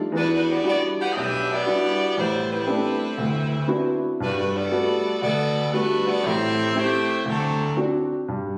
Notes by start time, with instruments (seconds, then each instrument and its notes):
0.12 grand piano E2 E3
0.17 saxophone section G3 D4 F#4 B4
0.35 saxophone section G3 D4 F#4 B4
0.50 saxophone section B3 F#4 G4 D5
0.64 grand piano G3 D4 E4 F#4, saxophone section B3 F#4 D5
0.68 saxophone section G4
1.00 saxophone section D4 G4 B4 F#5
1.12 grand piano B1, saxophone section D#5
1.18 saxophone section D4 G4 B4 E5
1.52 saxophone section B3 F#4 G4 D5
1.65 grand piano G3 D4 E4 F#4
2.17 grand piano A1, saxophone section G3 B3 E4 C5
2.52 saxophone section G3 C4 E4 B4
2.67 grand piano A3 B3 C4 D4 G4
3.18 grand piano D2
3.68 grand piano B3 C4 D4 E4 F#4
4.20 grand piano G2, saxophone section A3 F#4 B4
4.24 saxophone section D4
4.38 saxophone section A3 D4 F#4 B4
4.56 saxophone section B3 F#4 A4 D5
4.71 grand piano G3 A3 B3 F#4
5.22 grand piano D2, saxophone section B3 F#4 A4 D5
5.73 grand piano G3 A3 B3 F#4, saxophone section A3 D4 F#4 B4
6.07 saxophone section B3 F#4 A4 D5
6.24 grand piano A1 A2, saxophone section C4 G4 A4 E5
6.74 grand piano A3 C4 G4, saxophone section A3 E4 G4 C5
7.25 grand piano D2, saxophone section F#3 C4 D4 A4
7.77 grand piano C4 D4 F#4
8.28 grand piano G2